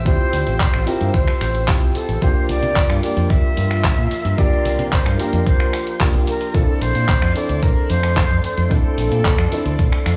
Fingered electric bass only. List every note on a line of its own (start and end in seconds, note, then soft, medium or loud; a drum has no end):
0.06 0.16 D2 loud
0.33 0.43 D2 medium
0.47 0.67 A1 medium
0.74 0.84 A1 medium
0.87 muted fingered electric bass stroke soft
1.01 1.11 G2 medium
1.14 1.24 D2 medium
1.41 1.76 A1 medium
1.82 1.92 C2 medium
2.09 2.19 A1 medium
2.22 2.32 C2 loud
2.49 2.59 C2 medium
2.63 2.83 C3 medium
2.90 3.00 G2 medium
3.17 3.27 F2 medium
3.30 3.40 C2 medium
3.57 3.92 G2 medium
3.98 4.08 A#2 medium
4.11 muted fingered electric bass stroke soft
4.25 4.35 G2 medium
4.38 4.49 C2 loud
4.65 4.75 C2 medium
4.79 4.99 C3 medium
5.06 5.16 G2 medium
5.20 muted fingered electric bass stroke soft
5.33 5.43 F2 medium
5.46 5.57 C2 medium
6.14 6.24 C2 loud
6.55 6.65 A#1 loud
6.81 6.92 A#1 medium
6.95 7.15 A#2 medium
7.22 7.32 F2 medium
7.49 7.59 D2 medium
7.63 7.73 A#1 medium
7.90 8.25 F2 medium
8.30 8.40 F2 medium
8.44 muted fingered electric bass stroke soft
8.57 8.68 F2 medium
8.71 8.81 A#1 loud
8.98 9.08 A#1 medium
9.11 9.31 A#2 medium
9.38 9.49 F2 medium
9.52 muted fingered electric bass stroke soft
9.65 9.76 D2 medium
9.79 9.89 A#1 medium
10.06 10.17 F2 medium